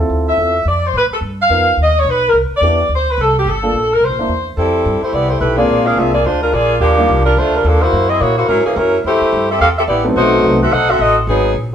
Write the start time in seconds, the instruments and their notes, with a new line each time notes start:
0.00 grand piano C4 E4 F4 A4
0.10 upright bass D2
0.29 saxophone section E5
0.37 upright bass E2, grand piano C4 E4 F4 A4
0.65 upright bass F2, saxophone section D5
0.87 saxophone section C5
0.93 upright bass A2
0.98 saxophone section B4
1.11 saxophone section A4, muted upright bass stroke
1.21 upright bass G2
1.42 saxophone section F5
1.50 upright bass F2, grand piano B3 D#4 F4 A#4
1.77 upright bass D#2
1.82 saxophone section D#5
2.00 saxophone section C#5
2.04 upright bass B1
2.11 saxophone section B4
2.29 saxophone section A#4
2.33 upright bass C2
2.51 muted upright bass stroke
2.57 saxophone section D5
2.61 upright bass E2, grand piano B3 D4 E4 G4
2.89 upright bass D2
2.95 saxophone section C5
3.12 saxophone section B4
3.18 upright bass C2, saxophone section A4
3.39 saxophone section G4
3.45 upright bass G1
3.50 saxophone section A4
3.63 grand piano A#3 D4 F4 A4
3.73 upright bass A#1
3.94 saxophone section A#4
4.01 upright bass C2
4.05 saxophone section C5
4.10 upright bass A#1
4.19 upright bass G1, grand piano A#3 D4 E4 A#4
4.28 upright bass E2
4.57 upright bass F2, saxophone section G3 C4 E4 A4
4.85 upright bass G2
5.02 saxophone section A3 E4 G4 C5, muted upright bass stroke
5.13 upright bass C2, saxophone section B3 E4 G4 D5
5.30 saxophone section A3 E4 G4 C5
5.41 upright bass B1, saxophone section A3 E4 G4 B4
5.58 grand piano G#3 A#3 C4 D4 F4, saxophone section A#3 F4 G#4 D5
5.69 upright bass A#1
5.86 saxophone section D4 G#4 A#4 F5
5.97 upright bass C2, grand piano G#3 A#3 C4 D4 F4, saxophone section C4 F4 G#4 E5
6.14 saxophone section A#3 F4 G#4 D5
6.24 upright bass D2, saxophone section G#3 D4 F4 C5
6.43 saxophone section G#3 D4 F4 A#4
6.53 upright bass A#1, saxophone section A#3 F4 G#4 D5
6.80 upright bass D#2, saxophone section F3 A#3 D4 G4
6.98 grand piano G3 A#3 D4 D#4 F4
7.09 upright bass C2
7.26 saxophone section G3 D4 F4 A#4
7.37 upright bass D2, saxophone section A3 D4 F4 C5
7.56 saxophone section G3 D4 F4 A#4
7.64 upright bass D#2, saxophone section F3 A#3 D4 A4
7.82 saxophone section A#3 E4 F#4 C5
7.93 upright bass F#2
8.09 saxophone section C4 E4 G#4 D#5
8.21 upright bass A#2, saxophone section A#3 E4 F#4 C#5
8.38 saxophone section A#3 E4 F#4 C5
8.48 upright bass G#2, saxophone section F#3 C#4 E4 A#4
8.65 saxophone section E3 A#3 C#4 G#4, muted upright bass stroke
8.76 upright bass F#2, saxophone section F#3 C#4 E4 A#4
9.04 upright bass F2, saxophone section A3 E4 G4 C5
9.21 muted upright bass stroke
9.33 upright bass G2
9.51 saxophone section C4 G4 A4 E5
9.60 upright bass E2, saxophone section C4 G4 A4 F5
9.79 saxophone section C4 G4 A4 E5
9.87 upright bass A1, saxophone section B3 E4 G4 D5
10.04 grand piano F#3 A3 B3 C4 D#4
10.16 upright bass B1, saxophone section A3 D#4 F#4 C5
10.43 upright bass C2, grand piano F#3 A3 B3 C4 D#4
10.62 saxophone section C4 F#4 A4 E5
10.71 upright bass B1, saxophone section D#4 A4 C5 F#5
10.90 saxophone section C4 F#4 A4 E5
10.99 upright bass A1, saxophone section C4 F#4 A4 D#5
11.27 upright bass G#1, saxophone section F#3 B3 D#4 G#4
11.54 upright bass A#1